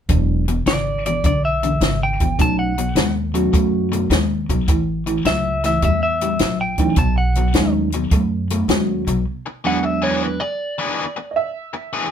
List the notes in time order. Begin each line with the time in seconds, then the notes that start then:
0.09 E1 E2 B2 F#3 G#3 B3 D4, kick, closed hi-hat
0.48 E2 B2, closed hi-hat
0.66 G#1 E2 C#3 D5, snare, closed hi-hat
1.06 E2 B2 D5, closed hi-hat
1.24 B1 E2 D3 D5, kick, closed hi-hat
1.45 E5
1.63 E2 D3, closed hi-hat
1.81 G#1 E2 C#3, snare, closed hi-hat
2.03 G5
2.20 E2 B2, kick, closed hi-hat
2.38 B1 B2 F#3 A3 C#4 D#4 A5, kick, closed hi-hat
2.59 F#5
2.78 B2 F#3, closed hi-hat
2.95 D#2 B2 G#3, snare, closed hi-hat
3.34 B2 F#3 A3 C#4 F#4, closed hi-hat
3.53 F#2 B2 A3, kick, closed hi-hat
3.92 B2 A3, closed hi-hat
4.10 D#2 B2 G#3, snare, closed hi-hat
4.49 B1 B2 F#3, kick, closed hi-hat
4.68 A1 A2 E3, kick, closed hi-hat
5.06 A2 E3, closed hi-hat
5.25 C#2 A2 F#3 E5, snare, closed hi-hat
5.64 A2 E3 E5, snare, closed hi-hat
5.82 E2 A2 G3 E5, kick, closed hi-hat
6.03 E5
6.21 A2 G3, closed hi-hat
6.39 A#1 A2 F#3, snare, closed hi-hat
6.61 G5
6.78 A2 E3 F#3 A3 C#4 D#4, kick, closed hi-hat
6.96 B1 B2 F#3 A5, kick, closed hi-hat
7.18 F#5
7.35 B2 F#3, closed hi-hat
7.54 D#2 B2 F#3 G#3 A3 C#4 D#4, snare, closed hi-hat
7.92 B2 F#3, closed hi-hat
8.11 F#2 B2 A3, kick, closed hi-hat
8.50 B2 A3, closed hi-hat
8.68 D#2 B2 F#3 G#3 A3 C#4 F#4, snare, closed hi-hat
9.07 B1 B2 F#3, closed hi-hat
9.46 muted overdriven electric guitar stroke
9.64 E2 E3 F#3 G#3 B3 D4 G#4 F#5
9.83 E5, muted overdriven electric guitar stroke
10.02 E3 B3 D4 G#4 C#5
10.23 B4
10.40 D5, muted overdriven electric guitar stroke
10.78 E3 B3 D4 G#4
10.88 E3 B3 D4 G#4
11.16 muted overdriven electric guitar stroke
11.31 D#5
11.36 E5
11.73 muted overdriven electric guitar stroke
11.93 E3 B3 D4 G#4